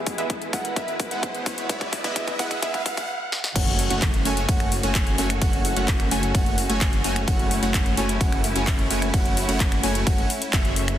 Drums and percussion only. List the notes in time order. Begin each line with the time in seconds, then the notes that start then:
0.07 kick, open hi-hat
0.18 closed hi-hat
0.30 kick, closed hi-hat
0.42 closed hi-hat
0.53 kick, open hi-hat
0.65 closed hi-hat
0.76 kick, closed hi-hat
0.88 closed hi-hat
1.00 kick, open hi-hat
1.11 closed hi-hat
1.23 kick, closed hi-hat
1.35 closed hi-hat
1.46 kick, open hi-hat
1.58 closed hi-hat
1.69 kick, closed hi-hat
1.81 kick, closed hi-hat
1.93 kick, open hi-hat
2.04 kick, closed hi-hat
2.16 kick, closed hi-hat
2.28 kick, closed hi-hat
2.39 kick, open hi-hat
2.51 kick, closed hi-hat
2.62 kick, closed hi-hat
2.74 kick, closed hi-hat
2.86 kick, open hi-hat
2.97 kick, closed hi-hat
3.32 snare
3.44 snare
3.56 kick, closed hi-hat, crash, ride
3.67 closed hi-hat
3.79 open hi-hat
3.90 closed hi-hat
4.02 kick, clap, closed hi-hat, ride
4.14 closed hi-hat
4.25 open hi-hat
4.37 closed hi-hat
4.49 kick, closed hi-hat, ride
4.60 finger snap, closed hi-hat
4.72 open hi-hat
4.83 closed hi-hat
4.95 kick, clap, closed hi-hat, ride
5.07 closed hi-hat
5.18 open hi-hat
5.30 finger snap, closed hi-hat
5.42 kick, closed hi-hat, ride
5.53 closed hi-hat
5.65 open hi-hat
5.76 closed hi-hat
5.88 kick, clap, closed hi-hat, ride
6.00 finger snap, closed hi-hat
6.11 open hi-hat
6.23 closed hi-hat
6.35 kick, closed hi-hat, ride
6.46 closed hi-hat
6.58 open hi-hat
6.70 closed hi-hat
6.81 kick, clap, closed hi-hat, ride
6.93 closed hi-hat
7.04 open hi-hat
7.16 finger snap, closed hi-hat
7.28 kick, closed hi-hat, ride
7.39 closed hi-hat
7.51 open hi-hat
7.63 closed hi-hat
7.74 kick, clap, closed hi-hat, ride
7.86 closed hi-hat
7.97 open hi-hat
8.09 closed hi-hat
8.21 kick, closed hi-hat, ride
8.32 finger snap, closed hi-hat
8.44 open hi-hat
8.56 closed hi-hat
8.67 kick, clap, closed hi-hat, ride
8.79 closed hi-hat
8.91 open hi-hat
9.02 finger snap, closed hi-hat
9.14 kick, closed hi-hat, ride
9.25 closed hi-hat
9.37 open hi-hat
9.49 closed hi-hat
9.60 kick, clap, closed hi-hat, ride
9.72 finger snap, closed hi-hat
9.83 open hi-hat
9.95 closed hi-hat
10.07 kick, closed hi-hat, ride
10.18 closed hi-hat
10.30 open hi-hat
10.42 closed hi-hat
10.53 kick, clap, closed hi-hat, ride
10.65 closed hi-hat
10.76 open hi-hat
10.88 finger snap, closed hi-hat